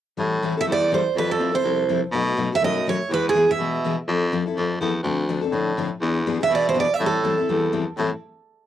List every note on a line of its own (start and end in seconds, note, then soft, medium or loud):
0.17 0.58 A2 medium
0.17 0.36 E3 medium
0.17 0.36 G3 medium
0.17 0.37 C4 medium
0.17 0.37 E4 medium
0.17 0.37 A4 medium
0.43 0.53 E3 medium
0.43 0.53 G3 medium
0.43 0.54 C4 medium
0.43 0.54 E4 medium
0.43 0.54 A4 medium
0.57 0.66 C4 soft
0.57 0.66 E4 soft
0.57 0.67 A4 soft
0.57 0.65 E5 medium
0.66 1.05 E2 medium
0.66 0.85 E3 medium
0.66 0.85 G3 medium
0.66 0.85 C4 medium
0.66 0.85 E4 medium
0.66 0.86 A4 medium
0.72 0.94 D5 medium
0.92 1.02 E3 medium
0.92 1.02 G3 medium
0.92 1.02 C4 medium
0.92 1.03 E4 medium
0.92 1.02 A4 medium
0.92 1.18 C5 medium
1.16 1.55 F2 medium
1.16 1.34 F3 medium
1.16 1.35 C4 medium
1.16 1.35 E4 medium
1.16 1.35 A4 medium
1.16 1.30 B4 medium
1.31 1.53 A4 medium
1.39 1.50 F3 medium
1.39 1.50 C4 medium
1.39 1.51 E4 medium
1.39 1.51 A4 medium
1.52 1.64 C4 soft
1.52 1.64 E4 soft
1.52 1.63 A4 medium
1.52 2.00 C5 medium
1.63 2.03 C2 medium
1.63 1.82 F3 medium
1.63 1.83 C4 medium
1.63 1.83 E4 medium
1.63 1.83 A4 medium
1.89 1.99 F3 medium
1.89 1.99 C4 medium
1.89 2.00 E4 medium
1.89 2.00 A4 medium
2.12 2.51 B2 medium
2.12 2.31 B2 medium
2.12 2.32 F#3 medium
2.12 2.32 A3 medium
2.12 2.32 D#4 medium
2.12 2.32 F#4 medium
2.37 2.48 B2 medium
2.37 2.47 F#3 medium
2.37 2.48 A3 medium
2.37 2.48 D#4 medium
2.37 2.48 F#4 medium
2.52 2.61 A3 soft
2.52 2.61 D#4 soft
2.52 2.62 F#4 medium
2.52 2.64 E5 loud
2.61 3.01 F#2 medium
2.61 2.80 B2 medium
2.61 2.80 F#3 medium
2.61 2.80 A3 medium
2.61 2.80 D#4 medium
2.61 2.81 F#4 medium
2.61 2.88 D#5 medium
2.87 2.97 B2 medium
2.87 2.97 F#3 medium
2.87 2.97 A3 medium
2.87 2.97 D#4 medium
2.87 2.97 F#4 medium
2.87 3.10 C#5 medium
3.09 3.49 E2 medium
3.09 3.29 E3 medium
3.09 3.29 G#3 medium
3.09 3.29 B3 medium
3.09 3.29 E4 medium
3.09 3.29 G#4 medium
3.14 3.25 B4 medium
3.29 3.49 G#4 medium
3.35 3.45 E3 medium
3.35 3.45 G#3 medium
3.35 3.46 B3 medium
3.35 3.46 E4 medium
3.35 3.46 G#4 medium
3.48 3.59 B3 soft
3.48 3.59 E4 soft
3.48 3.58 G#4 medium
3.48 3.95 E5 medium
3.59 3.98 B2 medium
3.59 3.77 E3 medium
3.59 3.78 G#3 medium
3.59 3.78 B3 medium
3.59 3.78 E4 medium
3.59 3.78 G#4 medium
3.85 3.94 E3 medium
3.85 3.94 G#3 medium
3.85 3.95 B3 medium
3.85 3.95 E4 medium
3.85 3.95 G#4 medium
4.08 4.47 F2 medium
4.08 4.26 F3 medium
4.08 4.26 C4 medium
4.08 4.26 E4 medium
4.08 4.26 A4 medium
4.32 4.42 F3 medium
4.32 4.43 C4 medium
4.32 4.43 E4 medium
4.32 4.43 A4 medium
4.46 4.56 C4 soft
4.46 4.57 E4 soft
4.46 4.56 A4 soft
4.57 4.77 F2 medium
4.57 4.75 F3 medium
4.57 4.75 C4 medium
4.57 4.75 E4 medium
4.57 4.76 A4 medium
4.81 5.01 E2 medium
4.81 4.91 F3 medium
4.81 4.91 C4 medium
4.81 4.91 E4 medium
4.81 4.92 A4 medium
5.03 5.43 D2 medium
5.03 5.23 D3 medium
5.03 5.23 F3 medium
5.03 5.23 C4 medium
5.03 5.23 D4 medium
5.03 5.23 A4 medium
5.29 5.39 D3 medium
5.29 5.39 F3 medium
5.29 5.40 C4 medium
5.29 5.40 D4 medium
5.29 5.40 A4 medium
5.41 5.52 C4 soft
5.41 5.52 D4 soft
5.41 5.52 A4 medium
5.52 5.91 A2 medium
5.52 5.71 D3 medium
5.52 5.71 F3 medium
5.52 5.71 C4 medium
5.52 5.71 D4 medium
5.52 5.72 A4 medium
5.77 5.88 D3 medium
5.77 5.88 F3 medium
5.77 5.88 C4 medium
5.77 5.89 D4 medium
5.77 5.88 A4 medium
6.01 6.41 E2 medium
6.01 6.20 E3 medium
6.01 6.21 B3 medium
6.01 6.21 D4 medium
6.01 6.21 G#4 medium
6.27 6.37 E3 medium
6.27 6.37 B3 medium
6.27 6.37 D4 medium
6.27 6.38 G#4 medium
6.40 6.50 B3 soft
6.40 6.50 D4 medium
6.40 6.50 G#4 medium
6.40 6.53 E5 medium
6.49 6.89 B2 medium
6.49 6.69 E3 medium
6.49 6.69 B3 medium
6.49 6.69 D4 medium
6.49 6.69 G#4 medium
6.55 6.66 D5 medium
6.69 6.77 C5 medium
6.74 6.85 E3 medium
6.74 6.85 B3 medium
6.74 6.86 D4 medium
6.74 6.86 G#4 medium
6.80 6.94 D5 medium
6.94 7.02 E5 medium
7.00 7.39 A2 medium
7.00 7.18 E3 medium
7.00 7.18 G3 medium
7.00 7.18 C4 medium
7.00 7.18 E4 medium
7.00 7.19 A4 medium
7.06 7.72 A4 medium
7.24 7.34 E3 medium
7.24 7.35 G3 medium
7.24 7.35 C4 medium
7.24 7.35 E4 medium
7.24 7.35 A4 medium
7.37 7.48 C4 soft
7.37 7.48 E4 soft
7.37 7.48 A4 soft
7.49 7.88 E2 medium
7.49 7.67 E3 medium
7.49 7.67 G3 medium
7.49 7.67 C4 medium
7.49 7.67 E4 medium
7.49 7.67 A4 medium
7.73 7.83 E3 medium
7.73 7.83 G3 medium
7.73 7.83 C4 medium
7.73 7.83 E4 medium
7.73 7.84 A4 medium
7.97 8.08 A2 medium
7.97 8.11 A2 medium
7.97 8.09 E3 medium
7.97 8.09 G3 medium
7.97 8.09 C4 medium
7.97 8.09 E4 medium
7.97 8.09 A4 medium